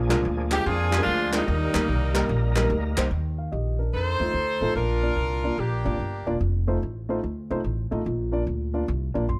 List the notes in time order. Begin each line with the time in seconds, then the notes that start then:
Already playing: A#1 A#2 F3 A#3 D4 G#4
0.09 C2 G#3 D4 F4 A#4, clap
0.25 D2
0.51 G#3 D4 F4 G4 G#4, clap
0.66 F2 D4 F4 G#4
0.91 G#3 D4 F4 G4, clap
0.97 G#3 D4 F4 A#4
1.02 F4
1.06 D2
1.32 G3 G#3 A#3 D4 F4 A#4, clap
1.37 D#4
1.46 D#2 D#3 G3 A#3 D#4 A#4
1.73 D2 G3 A#3 D#4 A#4, clap
1.88 C2
2.14 G3 A#3 D#4 A#4, clap
2.29 A#1
2.55 G3 A#3 D#4 A#4, clap
2.63 G3 A#3 D#4 A#4
2.70 D2
2.97 C2 G3 A#3 D#4 C5, clap
3.11 D#2 D#3
3.38 F5
3.52 A#1 G4 D#5
3.79 D4 A#4
3.93 F2 D#4 A4 C5
4.20 D#2 A3 D#4 F4 C5
4.34 D2
4.61 A1 A3 D#4 F4 A4
4.75 A#1 A#2 D4 F4 A#4
5.03 A#3 D4 F4 D5
5.16 C2
5.44 A#3 D4 F4 D5
5.58 A#1 A#3 D4 G4
5.84 G#1 A#3 D4 F4 D5
6.00 G1
6.26 E1 A#3 D4 F4 D5
6.41 F1
6.67 A3 D#4 F4 C5
6.83 A1
7.09 A3 D#4 F4 C5
7.24 D2
7.50 C2 A3 D#4 F4 C5
7.64 A1
7.91 A1 A3 D#4 F4 D#5
8.05 A#1 A#2
8.32 A#3 D4 F4 D5
8.47 D2
8.73 A#3 D4 F4 D5
8.88 C2
9.14 A#1 A#3 D4 F4 D5
9.29 G#1 C6